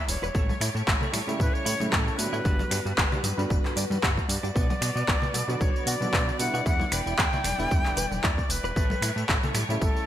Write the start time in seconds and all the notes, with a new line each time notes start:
Already playing: G3 E4 D5
0.08 E1 C#5, open hi-hat, tambourine
0.22 E1 B4, tambourine
0.34 A1 A3 G4 C#5, kick, tambourine
0.49 A3, tambourine, high conga
0.60 A2 E4, finger snap, open hi-hat, tambourine
0.75 A2 A3, tambourine
0.87 A1 A3, kick, clap, tambourine
1.01 A3, tambourine, low conga
1.13 A2 G3, finger snap, open hi-hat, tambourine, high conga
1.27 A2 C#3 G3 A3 E4, tambourine
1.39 A1 B4, kick, tambourine
1.54 C#5, tambourine
1.65 A2 E4, open hi-hat, tambourine
1.80 A2 C#3 G3 A3 E4, tambourine, high conga
1.92 A1 A3 A4, kick, clap, tambourine
2.08 tambourine
2.17 A2 D3 G3 B3 F#4 B4, open hi-hat, tambourine
2.33 A2 E4, tambourine
2.45 G1 G3 F#4 B4, kick, tambourine
2.59 G3, tambourine, high conga
2.71 G2 D4, finger snap, open hi-hat, tambourine
2.86 G2 G3, tambourine
2.98 G1 G3, kick, clap, tambourine
3.12 G3, tambourine, low conga
3.24 G2 F#3, open hi-hat, tambourine, high conga
3.37 G2 D3 G3 B3 F#4, tambourine
3.50 G1, kick, tambourine
3.64 G2 D3 G3 B3 F#4, clap, tambourine
3.76 G2 D4, open hi-hat, tambourine
3.90 G2, tambourine, high conga
4.03 G1 G3 F#5, kick, clap, tambourine
4.17 kick, tambourine
4.29 G2 D5, open hi-hat, tambourine
4.43 G2 D4, tambourine
4.55 B1 B3 D5, kick, tambourine
4.70 B3, tambourine, high conga
4.81 B2 F#4, finger snap, open hi-hat, tambourine
4.96 B2 B3, tambourine
5.08 B1 B3, kick, clap, tambourine
5.22 B3, tambourine, low conga
5.34 B2 A3, open hi-hat, tambourine, high conga
5.48 B2 D3 F#3 B3 F#4, tambourine
5.61 B1 C#5, kick, tambourine
5.76 tambourine
5.86 B2 F#4 D5, open hi-hat, tambourine
6.01 B2 D3 F#3 B3 F#4, tambourine, high conga
6.13 B1 B3, kick, clap, tambourine
6.29 tambourine
6.39 B2 D3 G3 B3 E4 F#5, open hi-hat, tambourine
6.54 B2 F#4, tambourine
6.65 E2 G3 E4 F#5, kick, tambourine
6.80 E4, tambourine, high conga
6.92 E1 B4 G5, finger snap, open hi-hat, tambourine
7.06 E1 E4, tambourine
7.18 E2 E4, kick, clap, tambourine
7.33 E4, tambourine, low conga
7.44 E1 D4, finger snap, open hi-hat, tambourine, high conga
7.58 E1 D3 G3 B3 E4, tambourine
7.71 E2, kick, tambourine
7.85 E1 D3 G3 B3 E4, clap, tambourine
7.97 E1 B4, open hi-hat, tambourine
8.11 E1, tambourine, high conga
8.24 E2 E4 D5, kick, clap, tambourine
8.38 kick, tambourine
8.49 E1 B4, open hi-hat, tambourine
8.64 E1 B4, tambourine
8.76 A1 A3 G4 C#5, kick, tambourine
8.90 A3, tambourine, high conga
9.01 A2 E4, finger snap, open hi-hat, tambourine
9.16 A2 A3, tambourine
9.29 A1 A3, kick, clap, tambourine
9.43 A3, tambourine, low conga
9.54 A2 G3, finger snap, open hi-hat, tambourine, high conga
9.69 A2 C#3 G3 A3 E4, tambourine
9.81 A1 A4, kick, tambourine
9.96 tambourine